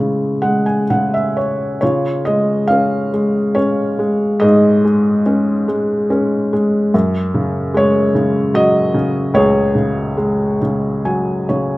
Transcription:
0.00 0.90 C#3 soft
0.00 0.41 G#3 soft
0.00 0.86 E4 soft
0.00 0.84 C#5 medium
0.42 1.79 G#3 soft
0.42 0.64 F#5 medium
0.66 0.88 G#5 soft
0.90 1.80 C#3 soft
0.90 1.12 F#5 soft
1.14 1.35 E5 medium
1.37 1.79 C#5 soft
1.81 4.38 C#3 soft
1.81 3.09 F4 soft
1.81 2.22 C#5 medium
2.25 3.12 G#3 soft
2.25 2.66 D#5 medium
2.68 3.54 C#4 soft
2.68 3.57 F5 medium
3.14 3.97 G#3 soft
3.55 5.23 C#4 soft
3.55 4.44 C#5 medium
3.99 4.83 G#3 soft
4.40 6.89 G#2 medium
4.40 5.65 G#4 soft
4.40 5.22 D#5 medium
4.85 5.67 G#3 soft
5.26 6.09 C#4 soft
5.68 6.51 G#3 soft
6.10 6.91 C#4 soft
6.53 6.93 G#3 soft
6.94 9.32 F#2 soft
7.34 8.13 C#3 soft
7.74 9.31 G#3 soft
7.74 8.59 C#5 medium
8.15 8.93 C#3 soft
8.54 10.14 F#3 soft
8.54 9.38 D#5 medium
8.94 9.73 C#3 soft
9.34 11.78 C#2 medium
9.34 10.59 G#4 medium
9.34 10.58 C#5 medium
9.75 10.60 C#3 soft
10.17 11.78 G#3 soft
10.62 11.48 C#3 soft
11.05 11.78 F#3 soft
11.05 11.46 G#5 soft
11.49 11.78 C#3 soft
11.49 11.78 C#5 soft

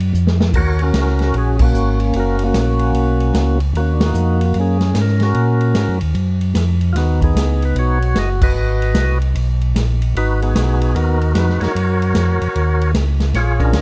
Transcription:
0.00 0.13 F#2 medium
0.00 ride soft
0.13 0.53 F2 loud
0.13 hi-hat pedal medium
0.27 snare medium
0.40 snare loud
0.53 0.93 D#2 medium
0.53 0.81 F#4 medium
0.53 0.82 A#4 medium
0.53 0.82 C#5 loud
0.53 kick medium
0.53 crash medium
0.79 1.35 C#4 medium
0.79 1.57 F#4 medium
0.79 ride soft
0.83 1.22 A#4 loud
0.93 1.33 C#2 medium
0.93 snare medium
0.93 hi-hat pedal medium
0.93 ride medium
1.06 snare soft
1.19 snare soft
1.19 ride soft
1.24 1.36 A#4 loud
1.34 1.73 A#1 medium
1.34 1.61 C#4 medium
1.34 ride medium
1.38 1.60 G#4 medium
1.59 2.37 A#3 medium
1.59 2.15 C#4 medium
1.59 kick medium
1.59 crash medium
1.64 2.00 F#4 medium
1.73 2.13 G#1 loud
1.73 hi-hat pedal medium
2.00 ride soft
2.13 2.53 F#1 medium
2.13 2.44 C#4 medium
2.13 2.46 F#4 medium
2.13 ride medium
2.19 2.44 A#4 loud
2.39 ride medium
2.44 3.58 A#3 medium
2.44 3.59 C#4 medium
2.44 3.60 F#4 loud
2.54 2.93 A#1 medium
2.54 snare medium
2.54 hi-hat pedal medium
2.54 ride medium
2.79 ride soft
2.93 3.33 B1 medium
2.93 ride medium
3.20 ride soft
3.34 3.73 C#2 loud
3.34 snare medium
3.34 hi-hat pedal medium
3.34 ride medium
3.60 ride medium
3.74 4.13 D#2 medium
3.74 4.02 A#3 medium
3.74 4.44 F#4 medium
3.74 ride medium
3.80 3.95 C#4 medium
3.93 4.02 D4 medium
4.00 4.78 A#3 medium
4.00 snare medium
4.00 ride medium
4.05 4.41 D#4 loud
4.14 4.53 F2 medium
4.14 hi-hat pedal medium
4.41 ride medium
4.46 4.58 F#4 medium
4.54 4.94 F#2 medium
4.54 ride medium
4.59 5.22 C#4 medium
4.59 4.99 G#4 medium
4.80 snare medium
4.80 ride soft
4.94 5.34 G#2 medium
4.94 snare medium
4.94 hi-hat pedal medium
4.94 ride medium
5.01 5.22 A#4 medium
5.07 snare soft
5.20 5.98 C#4 medium
5.20 5.98 F#4 medium
5.20 snare soft
5.20 ride soft
5.25 5.99 A#4 medium
5.34 5.74 A#2 medium
5.34 ride medium
5.61 ride soft
5.74 5.88 G#2 medium
5.74 snare medium
5.74 hi-hat pedal medium
5.74 ride medium
5.88 6.02 F#2 medium
6.01 6.14 D#2 medium
6.01 ride medium
6.15 6.54 F#2 medium
6.15 ride medium
6.41 ride soft
6.55 6.94 F2 medium
6.55 snare medium
6.55 hi-hat pedal medium
6.55 ride medium
6.81 ride medium
6.93 7.34 D#2 medium
6.93 6.96 F4 medium
6.93 7.20 F#4 medium
6.93 snare soft
6.93 ride medium
6.97 7.23 B3 medium
6.97 7.22 D#4 medium
7.22 7.99 B3 medium
7.22 7.99 D#4 medium
7.22 7.64 G#4 medium
7.22 kick medium
7.22 ride medium
7.35 7.74 C#2 medium
7.35 snare medium
7.35 hi-hat pedal medium
7.35 ride medium
7.62 7.77 B4 medium
7.62 ride soft
7.75 8.14 B1 medium
7.75 8.19 C#5 loud
7.75 ride medium
7.79 8.42 F#4 medium
8.02 ride soft
8.15 8.54 F#1 medium
8.15 8.30 D#5 loud
8.15 snare medium
8.15 hi-hat pedal medium
8.15 ride medium
8.41 9.18 F#4 medium
8.41 9.19 B4 medium
8.41 9.19 D#5 loud
8.41 kick medium
8.41 crash medium
8.55 8.94 G#1 medium
8.82 ride soft
8.94 9.34 C2 medium
8.94 snare medium
8.94 hi-hat pedal medium
8.94 ride medium
9.22 ride soft
9.35 9.74 B1 medium
9.35 ride medium
9.61 ride soft
9.75 10.14 A#1 loud
9.75 snare medium
9.75 hi-hat pedal medium
9.75 ride medium
10.02 ride soft
10.15 10.54 G#1 medium
10.15 10.42 D#4 medium
10.15 10.93 F#4 medium
10.15 10.41 B4 medium
10.15 ride medium
10.42 11.18 B3 medium
10.42 10.95 D#4 medium
10.42 10.80 G#4 medium
10.42 ride medium
10.55 10.95 B1 loud
10.55 snare medium
10.55 hi-hat pedal medium
10.55 ride medium
10.81 10.96 G#4 medium
10.81 ride medium
10.95 11.34 D#2 medium
10.95 11.72 D#4 medium
10.95 11.61 F#4 medium
10.95 11.33 A#4 medium
10.95 ride medium
11.21 ride soft
11.35 11.59 F2 loud
11.35 11.62 B4 loud
11.35 snare medium
11.35 hi-hat pedal soft
11.35 ride medium
11.49 snare soft
11.60 11.68 F2 soft
11.60 12.92 F#4 medium
11.60 12.92 A#4 medium
11.60 12.91 C#5 loud
11.60 snare medium
11.60 ride medium
11.75 12.14 F#2 medium
11.75 ride medium
12.02 ride soft
12.15 12.40 F2 loud
12.15 snare medium
12.15 hi-hat pedal medium
12.15 ride medium
12.41 12.48 F2 soft
12.41 ride medium
12.55 12.94 D#2 medium
12.55 ride medium
12.81 ride soft
12.94 13.34 C#2 medium
12.94 snare medium
12.94 hi-hat pedal medium
12.94 ride medium
13.20 snare medium
13.20 ride medium
13.34 13.73 A#1 medium
13.34 13.81 F4 medium
13.34 13.81 G#4 medium
13.34 13.62 C#5 loud
13.34 snare soft
13.34 ride medium
13.59 13.81 C#4 medium
13.59 13.81 D4 medium
13.59 13.81 A#4 loud
13.59 kick medium
13.59 ride medium
13.73 13.81 D2 medium
13.73 snare medium
13.73 hi-hat pedal medium
13.73 ride medium

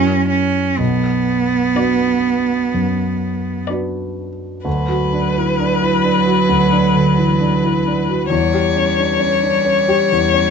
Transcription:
0.00 0.76 F#2 soft
0.00 0.29 C#4 medium
0.00 0.75 E4 soft
0.00 0.75 F#4 soft
0.00 0.76 A#4 soft
0.00 0.55 E5 soft
0.29 0.79 C#4 medium
0.78 1.72 B1 soft
0.78 3.68 B3 medium
1.75 2.69 D4 soft
1.75 2.70 F#4 soft
1.75 2.70 B4 soft
1.75 2.50 D5 soft
2.74 4.27 F#2 soft
3.67 4.62 D4 soft
3.67 4.63 F#4 soft
3.67 4.63 B4 soft
3.67 4.42 D5 soft
4.65 6.45 D2 soft
4.65 8.28 F#3 medium
4.65 8.28 B4 soft
4.88 5.27 F#4 soft
5.13 5.50 D4 soft
5.37 5.60 E4 soft
5.60 5.95 D4 soft
5.82 6.04 E4 soft
6.03 6.40 D4 soft
6.26 6.63 F#4 soft
6.49 8.28 D2 soft
6.71 7.09 D4 soft
6.95 7.32 D3 soft
7.18 7.41 E3 soft
7.40 7.77 D4 soft
7.64 7.87 E4 soft
7.86 8.23 D4 soft
8.08 8.31 F#4 soft
8.30 10.06 E2 soft
8.30 10.50 G3 medium
8.30 10.50 C#5 medium
8.54 8.90 G4 soft
8.76 9.11 C#4 soft
8.99 9.21 D4 soft
9.20 9.56 C#4 soft
9.42 9.65 D4 soft
9.65 10.01 C#4 soft
9.88 10.25 G4 soft
10.12 10.50 E2 soft
10.34 10.50 C#4 soft

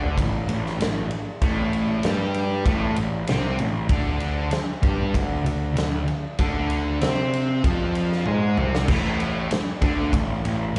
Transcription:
0.00 0.15 D2 loud
0.00 0.17 D3 loud
0.00 0.17 D4 medium
0.17 0.46 A1 medium
0.17 0.43 A2 medium
0.17 kick medium
0.17 ride medium
0.48 0.78 A1 medium
0.48 0.73 A2 medium
0.48 ride medium
0.66 snare soft
0.80 1.09 A1 medium
0.80 1.04 A2 medium
0.80 snare loud
0.80 ride medium
1.11 ride medium
1.42 2.00 A1 medium
1.42 2.03 A2 medium
1.42 2.03 A3 medium
1.42 kick loud
1.42 ride medium
1.73 ride medium
2.03 2.62 G2 medium
2.03 2.66 G3 medium
2.03 2.66 G4 medium
2.03 snare loud
2.03 ride medium
2.34 ride medium
2.65 2.95 A1 medium
2.65 2.96 A2 medium
2.65 2.96 A3 medium
2.65 kick loud
2.65 ride medium
2.96 3.27 A1 medium
2.96 3.22 A2 medium
2.96 ride medium
3.27 3.57 C2 medium
3.27 3.58 C3 medium
3.27 3.59 C4 loud
3.27 snare loud
3.27 ride loud
3.59 3.89 A1 medium
3.59 3.84 A2 medium
3.59 ride medium
3.89 4.48 D2 medium
3.89 4.50 D3 medium
3.89 4.52 D4 loud
3.89 kick loud
3.89 ride medium
4.20 ride medium
4.51 muted distorted electric guitar stroke medium
4.51 muted picked electric bass stroke soft
4.51 snare loud
4.51 ride medium
4.82 5.13 G2 loud
4.82 5.13 G3 medium
4.82 5.14 G4 medium
4.82 kick loud
4.82 ride medium
5.14 5.44 D2 medium
5.14 5.39 D3 medium
5.14 kick medium
5.14 ride medium
5.45 5.75 D2 medium
5.45 5.70 D3 medium
5.45 ride medium
5.76 6.07 D2 medium
5.76 6.01 D3 medium
5.76 snare loud
5.76 ride medium
6.08 ride medium
6.39 6.98 D2 loud
6.39 7.01 D3 medium
6.39 7.01 D4 loud
6.39 kick loud
6.39 ride medium
6.70 ride medium
7.01 7.60 C3 loud
7.01 7.63 C4 medium
7.01 7.63 C5 loud
7.01 snare loud
7.01 ride medium
7.33 ride medium
7.63 8.22 F2 medium
7.63 8.25 F3 medium
7.63 8.25 F4 loud
7.63 kick loud
7.63 ride medium
7.95 ride medium
8.12 snare soft
8.26 8.56 G#2 medium
8.26 8.56 G#3 medium
8.26 8.57 G#4 medium
8.26 high tom medium
8.57 8.87 C2 loud
8.57 8.88 C3 medium
8.57 8.88 C4 medium
8.57 mid tom medium
8.75 snare medium
8.88 9.47 A1 medium
8.88 9.50 A2 medium
8.88 9.50 A3 medium
8.88 kick loud
8.88 crash loud
9.20 ride medium
9.51 muted distorted electric guitar stroke medium
9.51 muted picked electric bass stroke soft
9.51 snare loud
9.51 ride loud
9.82 10.11 D2 loud
9.82 10.12 D3 medium
9.82 10.12 D4 loud
9.82 kick loud
9.82 ride medium
10.13 10.42 A1 medium
10.13 10.38 A2 medium
10.13 kick medium
10.13 ride loud
10.44 10.73 A1 medium
10.44 10.69 A2 medium
10.44 ride medium

